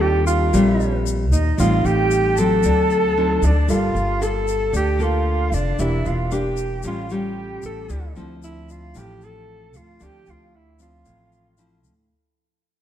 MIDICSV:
0, 0, Header, 1, 6, 480
1, 0, Start_track
1, 0, Key_signature, -1, "minor"
1, 0, Tempo, 525855
1, 1449, Time_signature, 4, 2, 24, 8
1, 11701, End_track
2, 0, Start_track
2, 0, Title_t, "Flute"
2, 0, Program_c, 0, 73
2, 11, Note_on_c, 0, 79, 68
2, 242, Note_off_c, 0, 79, 0
2, 247, Note_on_c, 0, 77, 64
2, 925, Note_off_c, 0, 77, 0
2, 1206, Note_on_c, 0, 75, 64
2, 1430, Note_off_c, 0, 75, 0
2, 1456, Note_on_c, 0, 77, 80
2, 1697, Note_on_c, 0, 79, 85
2, 1711, Note_off_c, 0, 77, 0
2, 2151, Note_on_c, 0, 81, 88
2, 2164, Note_off_c, 0, 79, 0
2, 3151, Note_on_c, 0, 74, 71
2, 3164, Note_off_c, 0, 81, 0
2, 3371, Note_on_c, 0, 77, 77
2, 3385, Note_off_c, 0, 74, 0
2, 3853, Note_on_c, 0, 81, 72
2, 3867, Note_off_c, 0, 77, 0
2, 4332, Note_off_c, 0, 81, 0
2, 4342, Note_on_c, 0, 79, 80
2, 4589, Note_on_c, 0, 77, 72
2, 4603, Note_off_c, 0, 79, 0
2, 5060, Note_on_c, 0, 74, 68
2, 5074, Note_off_c, 0, 77, 0
2, 5298, Note_on_c, 0, 76, 77
2, 5311, Note_off_c, 0, 74, 0
2, 5546, Note_on_c, 0, 77, 69
2, 5560, Note_off_c, 0, 76, 0
2, 5782, Note_on_c, 0, 79, 70
2, 5796, Note_off_c, 0, 77, 0
2, 6257, Note_off_c, 0, 79, 0
2, 6264, Note_on_c, 0, 77, 72
2, 6506, Note_on_c, 0, 79, 74
2, 6520, Note_off_c, 0, 77, 0
2, 6976, Note_off_c, 0, 79, 0
2, 6982, Note_on_c, 0, 81, 67
2, 7418, Note_off_c, 0, 81, 0
2, 7686, Note_on_c, 0, 76, 63
2, 7939, Note_on_c, 0, 77, 72
2, 7953, Note_off_c, 0, 76, 0
2, 8174, Note_on_c, 0, 79, 86
2, 8188, Note_off_c, 0, 77, 0
2, 8417, Note_on_c, 0, 81, 85
2, 8431, Note_off_c, 0, 79, 0
2, 8892, Note_on_c, 0, 77, 75
2, 8905, Note_off_c, 0, 81, 0
2, 9133, Note_on_c, 0, 79, 78
2, 9147, Note_off_c, 0, 77, 0
2, 9397, Note_on_c, 0, 77, 75
2, 9410, Note_off_c, 0, 79, 0
2, 9630, Note_on_c, 0, 76, 64
2, 9644, Note_off_c, 0, 77, 0
2, 9861, Note_off_c, 0, 76, 0
2, 9872, Note_on_c, 0, 77, 66
2, 10785, Note_off_c, 0, 77, 0
2, 11701, End_track
3, 0, Start_track
3, 0, Title_t, "Alto saxophone"
3, 0, Program_c, 1, 65
3, 12, Note_on_c, 1, 67, 82
3, 242, Note_off_c, 1, 67, 0
3, 247, Note_on_c, 1, 65, 75
3, 925, Note_off_c, 1, 65, 0
3, 1207, Note_on_c, 1, 63, 72
3, 1431, Note_off_c, 1, 63, 0
3, 1460, Note_on_c, 1, 65, 98
3, 1696, Note_on_c, 1, 67, 93
3, 1710, Note_off_c, 1, 65, 0
3, 2181, Note_on_c, 1, 69, 103
3, 2195, Note_off_c, 1, 67, 0
3, 3147, Note_on_c, 1, 62, 80
3, 3161, Note_off_c, 1, 69, 0
3, 3380, Note_on_c, 1, 65, 98
3, 3394, Note_off_c, 1, 62, 0
3, 3859, Note_on_c, 1, 69, 93
3, 3873, Note_off_c, 1, 65, 0
3, 4335, Note_off_c, 1, 69, 0
3, 4351, Note_on_c, 1, 67, 90
3, 4594, Note_on_c, 1, 65, 86
3, 4607, Note_off_c, 1, 67, 0
3, 5059, Note_on_c, 1, 62, 76
3, 5073, Note_off_c, 1, 65, 0
3, 5299, Note_on_c, 1, 64, 91
3, 5313, Note_off_c, 1, 62, 0
3, 5540, Note_on_c, 1, 65, 79
3, 5554, Note_off_c, 1, 64, 0
3, 5780, Note_on_c, 1, 67, 87
3, 5794, Note_off_c, 1, 65, 0
3, 6256, Note_off_c, 1, 67, 0
3, 6275, Note_on_c, 1, 65, 86
3, 6505, Note_on_c, 1, 67, 90
3, 6519, Note_off_c, 1, 65, 0
3, 6979, Note_off_c, 1, 67, 0
3, 6991, Note_on_c, 1, 69, 85
3, 7423, Note_off_c, 1, 69, 0
3, 7708, Note_on_c, 1, 64, 79
3, 7955, Note_on_c, 1, 65, 82
3, 7969, Note_off_c, 1, 64, 0
3, 8203, Note_on_c, 1, 67, 94
3, 8217, Note_off_c, 1, 65, 0
3, 8442, Note_on_c, 1, 69, 100
3, 8456, Note_off_c, 1, 67, 0
3, 8918, Note_on_c, 1, 65, 80
3, 8932, Note_off_c, 1, 69, 0
3, 9164, Note_on_c, 1, 67, 97
3, 9178, Note_off_c, 1, 65, 0
3, 9410, Note_on_c, 1, 65, 82
3, 9423, Note_off_c, 1, 67, 0
3, 9643, Note_on_c, 1, 64, 77
3, 9656, Note_off_c, 1, 65, 0
3, 9867, Note_off_c, 1, 64, 0
3, 9882, Note_on_c, 1, 65, 80
3, 10789, Note_off_c, 1, 65, 0
3, 11701, End_track
4, 0, Start_track
4, 0, Title_t, "Nylon-string guitar"
4, 0, Program_c, 2, 24
4, 0, Note_on_c, 2, 51, 53
4, 0, Note_on_c, 2, 55, 59
4, 0, Note_on_c, 2, 60, 54
4, 0, Note_on_c, 2, 65, 65
4, 451, Note_off_c, 2, 55, 0
4, 454, Note_off_c, 2, 60, 0
4, 457, Note_off_c, 2, 65, 0
4, 473, Note_off_c, 2, 51, 0
4, 489, Note_on_c, 2, 46, 55
4, 493, Note_on_c, 2, 55, 58
4, 499, Note_on_c, 2, 60, 54
4, 500, Note_on_c, 2, 65, 51
4, 1135, Note_off_c, 2, 55, 0
4, 1139, Note_off_c, 2, 60, 0
4, 1139, Note_off_c, 2, 65, 0
4, 1426, Note_off_c, 2, 46, 0
4, 1448, Note_on_c, 2, 45, 50
4, 1450, Note_on_c, 2, 55, 50
4, 1454, Note_on_c, 2, 60, 50
4, 1461, Note_on_c, 2, 63, 54
4, 2132, Note_off_c, 2, 55, 0
4, 2132, Note_off_c, 2, 60, 0
4, 2137, Note_off_c, 2, 63, 0
4, 2174, Note_on_c, 2, 54, 59
4, 2174, Note_on_c, 2, 60, 57
4, 2385, Note_off_c, 2, 45, 0
4, 2417, Note_on_c, 2, 50, 52
4, 2853, Note_off_c, 2, 60, 0
4, 2854, Note_off_c, 2, 54, 0
4, 2898, Note_on_c, 2, 54, 53
4, 2898, Note_on_c, 2, 60, 54
4, 2903, Note_on_c, 2, 63, 53
4, 3203, Note_off_c, 2, 54, 0
4, 3203, Note_off_c, 2, 60, 0
4, 3206, Note_off_c, 2, 63, 0
4, 3350, Note_off_c, 2, 50, 0
4, 3367, Note_on_c, 2, 58, 51
4, 3371, Note_on_c, 2, 55, 50
4, 3372, Note_on_c, 2, 65, 49
4, 3377, Note_on_c, 2, 69, 52
4, 3811, Note_off_c, 2, 58, 0
4, 3813, Note_off_c, 2, 65, 0
4, 3816, Note_off_c, 2, 69, 0
4, 3843, Note_on_c, 2, 58, 52
4, 3847, Note_on_c, 2, 65, 51
4, 3849, Note_on_c, 2, 69, 56
4, 4307, Note_off_c, 2, 55, 0
4, 4314, Note_on_c, 2, 50, 52
4, 4529, Note_off_c, 2, 58, 0
4, 4529, Note_off_c, 2, 65, 0
4, 4532, Note_off_c, 2, 69, 0
4, 4552, Note_on_c, 2, 58, 64
4, 4558, Note_on_c, 2, 65, 62
4, 4565, Note_on_c, 2, 69, 60
4, 5243, Note_off_c, 2, 58, 0
4, 5246, Note_off_c, 2, 65, 0
4, 5250, Note_off_c, 2, 69, 0
4, 5259, Note_off_c, 2, 50, 0
4, 5288, Note_on_c, 2, 52, 50
4, 5289, Note_on_c, 2, 58, 54
4, 5295, Note_on_c, 2, 62, 50
4, 5298, Note_on_c, 2, 67, 54
4, 5731, Note_off_c, 2, 58, 0
4, 5733, Note_off_c, 2, 62, 0
4, 5736, Note_off_c, 2, 67, 0
4, 5762, Note_on_c, 2, 58, 56
4, 5768, Note_on_c, 2, 62, 54
4, 5770, Note_on_c, 2, 67, 56
4, 6227, Note_off_c, 2, 52, 0
4, 6229, Note_off_c, 2, 58, 0
4, 6230, Note_off_c, 2, 62, 0
4, 6230, Note_off_c, 2, 67, 0
4, 6242, Note_on_c, 2, 45, 55
4, 6247, Note_on_c, 2, 55, 53
4, 6251, Note_on_c, 2, 61, 51
4, 6253, Note_on_c, 2, 65, 62
4, 6451, Note_off_c, 2, 55, 0
4, 6452, Note_off_c, 2, 61, 0
4, 6454, Note_off_c, 2, 65, 0
4, 6489, Note_on_c, 2, 55, 63
4, 6493, Note_on_c, 2, 65, 68
4, 6494, Note_on_c, 2, 61, 58
4, 7172, Note_off_c, 2, 55, 0
4, 7174, Note_off_c, 2, 61, 0
4, 7174, Note_off_c, 2, 65, 0
4, 7183, Note_off_c, 2, 45, 0
4, 7208, Note_on_c, 2, 50, 48
4, 7210, Note_on_c, 2, 53, 53
4, 7216, Note_on_c, 2, 60, 49
4, 7219, Note_on_c, 2, 64, 59
4, 7353, Note_off_c, 2, 53, 0
4, 7354, Note_off_c, 2, 60, 0
4, 7356, Note_off_c, 2, 64, 0
4, 7451, Note_on_c, 2, 53, 55
4, 7455, Note_on_c, 2, 60, 59
4, 7458, Note_on_c, 2, 64, 61
4, 8134, Note_off_c, 2, 53, 0
4, 8134, Note_off_c, 2, 60, 0
4, 8137, Note_off_c, 2, 64, 0
4, 8146, Note_off_c, 2, 50, 0
4, 8169, Note_on_c, 2, 53, 56
4, 8173, Note_on_c, 2, 45, 52
4, 8178, Note_on_c, 2, 60, 55
4, 8178, Note_on_c, 2, 64, 58
4, 9092, Note_off_c, 2, 53, 0
4, 9095, Note_off_c, 2, 60, 0
4, 9096, Note_off_c, 2, 64, 0
4, 9108, Note_off_c, 2, 45, 0
4, 9129, Note_on_c, 2, 50, 52
4, 9131, Note_on_c, 2, 53, 52
4, 9133, Note_on_c, 2, 60, 49
4, 9136, Note_on_c, 2, 64, 51
4, 9607, Note_off_c, 2, 53, 0
4, 9610, Note_off_c, 2, 60, 0
4, 9610, Note_off_c, 2, 64, 0
4, 9851, Note_on_c, 2, 53, 54
4, 9857, Note_on_c, 2, 60, 58
4, 10067, Note_off_c, 2, 50, 0
4, 10092, Note_on_c, 2, 45, 54
4, 10532, Note_off_c, 2, 53, 0
4, 10535, Note_off_c, 2, 60, 0
4, 10568, Note_on_c, 2, 53, 56
4, 10572, Note_on_c, 2, 60, 51
4, 10579, Note_on_c, 2, 64, 57
4, 10878, Note_off_c, 2, 53, 0
4, 10881, Note_off_c, 2, 60, 0
4, 10884, Note_off_c, 2, 64, 0
4, 11027, Note_off_c, 2, 45, 0
4, 11701, End_track
5, 0, Start_track
5, 0, Title_t, "Upright bass"
5, 0, Program_c, 3, 32
5, 0, Note_on_c, 3, 39, 83
5, 451, Note_off_c, 3, 39, 0
5, 490, Note_on_c, 3, 34, 82
5, 1209, Note_off_c, 3, 34, 0
5, 1209, Note_on_c, 3, 39, 69
5, 1432, Note_off_c, 3, 39, 0
5, 1444, Note_on_c, 3, 33, 87
5, 1669, Note_off_c, 3, 33, 0
5, 1685, Note_on_c, 3, 33, 82
5, 2371, Note_off_c, 3, 33, 0
5, 2409, Note_on_c, 3, 38, 80
5, 3093, Note_off_c, 3, 38, 0
5, 3120, Note_on_c, 3, 38, 69
5, 3348, Note_off_c, 3, 38, 0
5, 3363, Note_on_c, 3, 31, 85
5, 3589, Note_off_c, 3, 31, 0
5, 3604, Note_on_c, 3, 31, 75
5, 4291, Note_off_c, 3, 31, 0
5, 4321, Note_on_c, 3, 38, 75
5, 5037, Note_on_c, 3, 29, 72
5, 5051, Note_off_c, 3, 38, 0
5, 5267, Note_off_c, 3, 29, 0
5, 5285, Note_on_c, 3, 28, 91
5, 5511, Note_off_c, 3, 28, 0
5, 5529, Note_on_c, 3, 28, 83
5, 6214, Note_off_c, 3, 28, 0
5, 6245, Note_on_c, 3, 33, 81
5, 6932, Note_off_c, 3, 33, 0
5, 6966, Note_on_c, 3, 33, 72
5, 7192, Note_off_c, 3, 33, 0
5, 7206, Note_on_c, 3, 38, 92
5, 7432, Note_off_c, 3, 38, 0
5, 7452, Note_on_c, 3, 38, 86
5, 8135, Note_off_c, 3, 38, 0
5, 8169, Note_on_c, 3, 33, 83
5, 8902, Note_off_c, 3, 33, 0
5, 8902, Note_on_c, 3, 38, 76
5, 9120, Note_off_c, 3, 38, 0
5, 9132, Note_on_c, 3, 38, 89
5, 9355, Note_off_c, 3, 38, 0
5, 9377, Note_on_c, 3, 38, 83
5, 10058, Note_off_c, 3, 38, 0
5, 10095, Note_on_c, 3, 33, 77
5, 10816, Note_off_c, 3, 33, 0
5, 10816, Note_on_c, 3, 38, 66
5, 11037, Note_off_c, 3, 38, 0
5, 11701, End_track
6, 0, Start_track
6, 0, Title_t, "Drums"
6, 248, Note_on_c, 9, 82, 63
6, 339, Note_off_c, 9, 82, 0
6, 491, Note_on_c, 9, 82, 56
6, 582, Note_off_c, 9, 82, 0
6, 733, Note_on_c, 9, 82, 25
6, 824, Note_off_c, 9, 82, 0
6, 971, Note_on_c, 9, 82, 48
6, 1063, Note_off_c, 9, 82, 0
6, 1211, Note_on_c, 9, 82, 62
6, 1302, Note_off_c, 9, 82, 0
6, 1449, Note_on_c, 9, 82, 61
6, 1540, Note_off_c, 9, 82, 0
6, 1693, Note_on_c, 9, 82, 24
6, 1784, Note_off_c, 9, 82, 0
6, 1926, Note_on_c, 9, 82, 53
6, 2017, Note_off_c, 9, 82, 0
6, 2164, Note_on_c, 9, 82, 61
6, 2256, Note_off_c, 9, 82, 0
6, 2401, Note_on_c, 9, 82, 60
6, 2493, Note_off_c, 9, 82, 0
6, 2648, Note_on_c, 9, 82, 26
6, 2740, Note_off_c, 9, 82, 0
6, 3128, Note_on_c, 9, 82, 57
6, 3220, Note_off_c, 9, 82, 0
6, 3367, Note_on_c, 9, 82, 59
6, 3458, Note_off_c, 9, 82, 0
6, 3612, Note_on_c, 9, 82, 25
6, 3704, Note_off_c, 9, 82, 0
6, 3853, Note_on_c, 9, 82, 52
6, 3945, Note_off_c, 9, 82, 0
6, 4087, Note_on_c, 9, 82, 60
6, 4178, Note_off_c, 9, 82, 0
6, 4327, Note_on_c, 9, 82, 58
6, 4418, Note_off_c, 9, 82, 0
6, 4567, Note_on_c, 9, 82, 26
6, 4658, Note_off_c, 9, 82, 0
6, 5046, Note_on_c, 9, 82, 59
6, 5137, Note_off_c, 9, 82, 0
6, 5285, Note_on_c, 9, 82, 63
6, 5377, Note_off_c, 9, 82, 0
6, 5526, Note_on_c, 9, 82, 26
6, 5617, Note_off_c, 9, 82, 0
6, 5764, Note_on_c, 9, 82, 53
6, 5856, Note_off_c, 9, 82, 0
6, 5997, Note_on_c, 9, 82, 60
6, 6088, Note_off_c, 9, 82, 0
6, 6231, Note_on_c, 9, 82, 61
6, 6323, Note_off_c, 9, 82, 0
6, 6477, Note_on_c, 9, 82, 27
6, 6569, Note_off_c, 9, 82, 0
6, 6958, Note_on_c, 9, 82, 63
6, 7050, Note_off_c, 9, 82, 0
6, 7206, Note_on_c, 9, 82, 59
6, 7297, Note_off_c, 9, 82, 0
6, 7448, Note_on_c, 9, 82, 25
6, 7539, Note_off_c, 9, 82, 0
6, 7693, Note_on_c, 9, 82, 56
6, 7784, Note_off_c, 9, 82, 0
6, 7933, Note_on_c, 9, 82, 57
6, 8025, Note_off_c, 9, 82, 0
6, 8166, Note_on_c, 9, 82, 59
6, 8258, Note_off_c, 9, 82, 0
6, 8411, Note_on_c, 9, 82, 26
6, 8502, Note_off_c, 9, 82, 0
6, 8890, Note_on_c, 9, 82, 56
6, 8981, Note_off_c, 9, 82, 0
6, 9128, Note_on_c, 9, 82, 63
6, 9219, Note_off_c, 9, 82, 0
6, 9365, Note_on_c, 9, 82, 27
6, 9456, Note_off_c, 9, 82, 0
6, 9851, Note_on_c, 9, 82, 64
6, 9943, Note_off_c, 9, 82, 0
6, 10091, Note_on_c, 9, 82, 53
6, 10183, Note_off_c, 9, 82, 0
6, 10336, Note_on_c, 9, 82, 25
6, 10427, Note_off_c, 9, 82, 0
6, 10567, Note_on_c, 9, 82, 55
6, 10658, Note_off_c, 9, 82, 0
6, 10809, Note_on_c, 9, 82, 62
6, 10900, Note_off_c, 9, 82, 0
6, 11701, End_track
0, 0, End_of_file